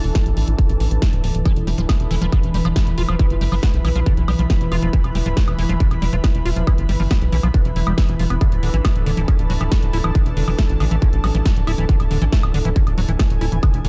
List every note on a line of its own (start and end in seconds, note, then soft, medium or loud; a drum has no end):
0.00 1.44 E3 medium
0.00 2.60 D4 medium
0.00 2.44 A4 medium
0.00 2.08 A5 medium
0.04 0.12 E1 medium
0.04 open hi-hat medium
0.15 kick loud
0.15 snare loud
0.15 closed hi-hat loud
0.26 0.33 A1 medium
0.26 closed hi-hat medium
0.37 0.44 A1 loud
0.37 open hi-hat loud
0.48 0.55 A1 medium
0.48 closed hi-hat medium
0.59 kick loud
0.59 closed hi-hat medium
0.69 0.77 A1 medium
0.69 closed hi-hat medium
0.80 0.88 A1 loud
0.80 open hi-hat loud
0.91 0.99 A1 medium
0.91 closed hi-hat medium
1.02 kick loud
1.02 snare loud
1.02 closed hi-hat medium
1.13 1.20 D1 medium
1.13 closed hi-hat medium
1.24 1.31 D1 loud
1.24 open hi-hat loud
1.35 1.42 D1 medium
1.35 closed hi-hat medium
1.46 1.52 E3 medium
1.46 13.89 E3 medium
1.46 10.03 E4 medium
1.46 kick loud
1.46 closed hi-hat medium
1.46 high woodblock soft
1.56 1.64 E1 medium
1.56 9.94 B4 medium
1.56 closed hi-hat medium
1.64 1.75 E1 loud
1.64 1.70 G3 loud
1.64 9.98 B5 medium
1.64 open hi-hat loud
1.78 1.86 D1 medium
1.78 1.81 F3 loud
1.78 closed hi-hat medium
1.89 1.92 B3 loud
1.89 kick loud
1.89 snare loud
1.89 closed hi-hat loud
1.89 high woodblock medium
2.00 2.07 E1 medium
2.00 closed hi-hat medium
2.11 2.18 E1 loud
2.11 2.15 E3 loud
2.11 open hi-hat loud
2.22 2.29 E1 medium
2.22 2.26 F3 loud
2.22 closed hi-hat medium
2.32 2.39 D3 medium
2.32 kick loud
2.32 closed hi-hat loud
2.32 high woodblock soft
2.43 2.51 E1 medium
2.43 closed hi-hat medium
2.54 2.62 E1 loud
2.54 2.57 G3 loud
2.54 open hi-hat loud
2.65 2.73 E1 medium
2.65 2.68 F3 loud
2.65 closed hi-hat medium
2.65 high woodblock soft
2.76 2.79 B3 loud
2.76 kick loud
2.76 snare loud
2.76 closed hi-hat loud
2.87 2.94 E1 medium
2.87 closed hi-hat medium
2.98 3.05 E1 loud
2.98 3.02 F4 loud
2.98 open hi-hat loud
3.09 3.16 E1 medium
3.09 3.15 F3 medium
3.09 closed hi-hat medium
3.09 high woodblock medium
3.19 3.26 E3 medium
3.19 kick loud
3.19 closed hi-hat medium
3.30 3.38 G1 medium
3.30 closed hi-hat medium
3.41 3.49 G1 loud
3.41 3.44 G3 loud
3.41 open hi-hat loud
3.52 3.60 G1 medium
3.52 3.55 F3 loud
3.52 open hi-hat medium
3.52 high woodblock soft
3.63 3.66 B3 loud
3.63 kick loud
3.63 snare loud
3.74 3.81 B1 medium
3.74 closed hi-hat medium
3.85 3.92 B1 loud
3.85 3.89 E3 loud
3.85 open hi-hat loud
3.85 high woodblock soft
3.96 4.03 B1 medium
3.96 4.00 F3 loud
3.96 closed hi-hat medium
4.06 4.13 D3 medium
4.06 kick loud
4.06 closed hi-hat loud
4.17 4.25 B1 medium
4.17 closed hi-hat medium
4.28 4.36 B1 loud
4.28 4.31 G3 loud
4.28 open hi-hat loud
4.28 high woodblock medium
4.39 4.47 B1 medium
4.39 4.42 F3 loud
4.39 closed hi-hat medium
4.50 4.53 B3 loud
4.50 kick loud
4.50 snare loud
4.50 closed hi-hat medium
4.61 4.68 E1 medium
4.61 closed hi-hat medium
4.72 4.79 E1 loud
4.72 4.76 F4 loud
4.72 open hi-hat loud
4.72 high woodblock soft
4.82 4.90 E1 medium
4.82 4.89 F3 medium
4.82 closed hi-hat medium
4.93 5.00 E3 medium
4.93 kick loud
4.93 closed hi-hat medium
5.04 5.12 E1 medium
5.04 closed hi-hat medium
5.04 high woodblock soft
5.15 5.23 E1 loud
5.15 5.18 G3 loud
5.15 open hi-hat loud
5.26 5.33 D1 medium
5.26 5.29 F3 loud
5.26 closed hi-hat medium
5.37 5.40 B3 loud
5.37 kick loud
5.37 snare loud
5.37 closed hi-hat medium
5.48 5.55 E1 medium
5.48 closed hi-hat medium
5.48 high woodblock medium
5.59 5.66 E1 loud
5.59 5.63 E3 loud
5.59 open hi-hat loud
5.69 5.77 E1 medium
5.69 5.74 F3 loud
5.69 closed hi-hat medium
5.80 5.87 D3 medium
5.80 kick loud
5.80 closed hi-hat medium
5.91 5.99 E1 medium
5.91 closed hi-hat medium
5.91 high woodblock soft
6.02 6.10 E1 loud
6.02 6.05 G3 loud
6.02 open hi-hat loud
6.13 6.20 E1 medium
6.13 6.16 F3 loud
6.13 closed hi-hat medium
6.24 6.27 B3 loud
6.24 kick loud
6.24 snare loud
6.24 closed hi-hat medium
6.24 high woodblock soft
6.35 6.42 E1 medium
6.35 closed hi-hat medium
6.46 6.53 E1 loud
6.46 6.50 F4 loud
6.46 open hi-hat loud
6.56 6.64 E1 medium
6.56 6.63 F3 medium
6.56 closed hi-hat medium
6.67 6.74 E3 medium
6.67 kick loud
6.67 closed hi-hat medium
6.67 high woodblock medium
6.78 6.86 G1 medium
6.78 closed hi-hat medium
6.89 6.97 G1 medium
6.89 6.92 G3 loud
6.89 open hi-hat loud
7.00 7.07 G1 medium
7.00 7.03 F3 loud
7.00 open hi-hat medium
7.11 7.13 B3 loud
7.11 kick loud
7.11 snare loud
7.11 closed hi-hat medium
7.11 high woodblock soft
7.22 7.29 B1 medium
7.22 closed hi-hat soft
7.32 7.40 B1 loud
7.32 7.37 E3 loud
7.32 open hi-hat loud
7.43 7.51 B1 medium
7.43 7.48 F3 loud
7.43 closed hi-hat soft
7.43 high woodblock soft
7.54 7.61 D3 medium
7.54 kick loud
7.54 closed hi-hat medium
7.65 7.73 E1 medium
7.65 closed hi-hat soft
7.76 7.83 E1 loud
7.76 7.81 E3 medium
7.76 open hi-hat loud
7.87 7.94 E1 medium
7.87 7.94 G3 medium
7.87 closed hi-hat medium
7.87 high woodblock medium
7.98 8.02 E3 loud
7.98 kick loud
7.98 snare loud
7.98 closed hi-hat medium
8.09 8.16 E1 medium
8.09 closed hi-hat soft
8.19 8.27 E1 loud
8.19 8.24 F3 medium
8.19 open hi-hat loud
8.30 8.38 E1 medium
8.30 8.35 B3 medium
8.30 closed hi-hat medium
8.30 high woodblock soft
8.41 8.48 D3 medium
8.41 13.89 D4 medium
8.41 kick loud
8.41 closed hi-hat medium
8.41 high woodblock soft
8.52 8.60 D1 medium
8.52 closed hi-hat medium
8.63 8.70 D1 loud
8.63 8.70 D3 medium
8.63 open hi-hat loud
8.74 8.81 A1 medium
8.74 8.77 E3 loud
8.74 13.89 A4 medium
8.74 closed hi-hat medium
8.81 8.87 A3 loud
8.81 13.03 A5 medium
8.81 kick loud
8.81 snare loud
8.81 closed hi-hat medium
8.81 high woodblock medium
8.96 9.03 D1 medium
8.96 closed hi-hat soft
9.06 9.14 D1 loud
9.06 9.11 D3 loud
9.06 open hi-hat loud
9.17 9.25 D1 medium
9.17 9.22 E3 loud
9.17 closed hi-hat medium
9.28 9.35 C#3 medium
9.28 kick loud
9.28 closed hi-hat medium
9.28 high woodblock soft
9.39 9.47 D1 medium
9.39 closed hi-hat medium
9.50 9.57 D1 loud
9.50 9.53 F#3 loud
9.50 open hi-hat loud
9.61 9.68 D1 medium
9.61 9.63 E3 loud
9.61 closed hi-hat soft
9.61 high woodblock soft
9.72 9.74 A3 loud
9.72 kick loud
9.72 snare loud
9.72 closed hi-hat medium
9.82 9.90 D1 medium
9.82 closed hi-hat medium
9.93 10.01 D1 loud
9.93 9.98 E4 loud
9.93 open hi-hat loud
10.04 10.12 D1 medium
10.04 10.11 E3 medium
10.04 closed hi-hat soft
10.04 high woodblock medium
10.15 10.22 D3 medium
10.15 kick loud
10.15 closed hi-hat medium
10.26 10.34 E1 medium
10.26 closed hi-hat medium
10.37 10.44 E1 loud
10.37 10.44 D3 medium
10.37 open hi-hat loud
10.48 10.55 E1 medium
10.48 10.50 E3 loud
10.48 open hi-hat medium
10.48 high woodblock soft
10.59 10.61 A3 loud
10.59 kick loud
10.59 snare loud
10.59 closed hi-hat loud
10.69 10.77 A1 medium
10.69 closed hi-hat medium
10.80 10.88 A1 loud
10.80 10.85 D3 loud
10.80 open hi-hat loud
10.80 high woodblock soft
10.91 10.99 A1 medium
10.91 10.96 E3 loud
10.91 closed hi-hat medium
11.02 11.09 C#3 medium
11.02 kick loud
11.02 closed hi-hat medium
11.13 11.20 A1 medium
11.13 closed hi-hat medium
11.24 11.31 A1 loud
11.24 11.27 F#3 loud
11.24 open hi-hat loud
11.24 high woodblock medium
11.35 11.42 A1 medium
11.35 11.37 E3 loud
11.35 closed hi-hat medium
11.46 11.48 A3 loud
11.46 kick loud
11.46 snare loud
11.46 closed hi-hat medium
11.56 11.64 D1 medium
11.56 closed hi-hat medium
11.67 11.75 D1 loud
11.67 11.72 E4 loud
11.67 open hi-hat loud
11.67 high woodblock soft
11.78 11.86 D1 medium
11.78 11.85 E3 medium
11.78 closed hi-hat medium
11.89 11.96 D3 medium
11.89 kick loud
11.89 closed hi-hat loud
12.00 12.07 D1 medium
12.00 closed hi-hat medium
12.00 high woodblock soft
12.11 12.18 D1 loud
12.11 12.18 D3 medium
12.11 open hi-hat loud
12.22 12.29 A1 medium
12.22 12.24 E3 loud
12.22 closed hi-hat medium
12.32 12.35 A3 loud
12.32 kick loud
12.32 snare loud
12.32 closed hi-hat loud
12.43 12.51 D1 medium
12.43 closed hi-hat medium
12.43 high woodblock medium
12.54 12.62 D1 loud
12.54 12.59 D3 loud
12.54 open hi-hat loud
12.65 12.73 D1 medium
12.65 12.70 E3 loud
12.65 closed hi-hat medium
12.76 12.83 C#3 medium
12.76 kick loud
12.76 closed hi-hat loud
12.87 12.94 D1 medium
12.87 13.89 G#5 medium
12.87 closed hi-hat medium
12.87 high woodblock soft
12.98 13.05 D1 loud
12.98 13.00 F#3 loud
12.98 open hi-hat loud
13.09 13.16 D1 medium
13.09 13.11 E3 loud
13.09 closed hi-hat medium
13.19 13.22 A3 loud
13.19 kick loud
13.19 snare loud
13.19 closed hi-hat loud
13.19 high woodblock soft
13.30 13.38 D1 medium
13.30 closed hi-hat medium
13.41 13.49 D1 loud
13.41 13.46 E4 loud
13.41 open hi-hat loud
13.52 13.60 D1 medium
13.52 13.59 E3 medium
13.52 closed hi-hat medium
13.63 13.70 D3 medium
13.63 kick loud
13.63 closed hi-hat medium
13.63 high woodblock medium
13.74 13.81 E1 medium
13.74 closed hi-hat medium
13.85 13.89 E1 loud
13.85 13.89 D3 medium
13.85 open hi-hat loud